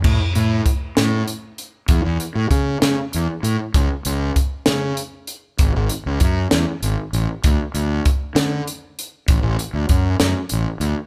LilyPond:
<<
  \new Staff \with { instrumentName = "Fingered electric bass" } { \clef bass \time 6/8 \key a \major \tempo 4. = 65 a,16 r16 a,8 r8 a,8 r4 | e,16 e,16 r16 a,16 cis8 cis16 r16 e,16 r16 a,16 r16 | cis,16 r16 cis,8 r8 cis8 r4 | gis,,16 gis,,16 r16 cis,16 fis,8 e,16 r16 gis,,16 r16 a,,16 r16 |
d,16 r16 d,8 r8 d8 r4 | a,,16 a,,16 r16 d,16 fis,8 fis,16 r16 a,,16 r16 d,16 r16 | }
  \new DrumStaff \with { instrumentName = "Drums" } \drummode { \time 6/8 <cymc bd>8 hh8 <hh bd>8 <hh sn>8 hh8 hh8 | <hh bd>8 hh8 <hh bd>8 <hh sn>8 hh8 hh8 | <hh bd>8 hh8 <hh bd>8 <hh sn>8 hh8 hh8 | <hh bd>8 hh8 <hh bd>8 <hh sn>8 hh8 hh8 |
<hh bd>8 hh8 <hh bd>8 <hh sn>8 hh8 hh8 | <hh bd>8 hh8 <hh bd>8 <hh sn>8 hh8 hh8 | }
>>